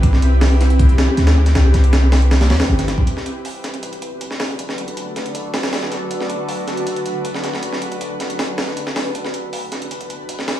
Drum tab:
HH |x-x-o-xxxxx-xx-x|x-xxx-oxoooo-xx-|x-x-o-xxxxx-x-o-|x-xxx-xxx-ooo-x-|
SD |-o--o-o---o-oo-o|o-o-o-o-oooo-oo-|-o----o------oo-|-o----o---ooooo-|
BD |o-------o-------|---------------o|----------------|----------------|

HH |x-x-o-xxxxx-x-x-|x-xxx-xxo-o-x-o-|x-x-o-xxxxx-x-o-|
SD |-o----o------ooo|-o----o-o-oo-oo-|-o----o------oo-|
BD |----------------|----------------|----------------|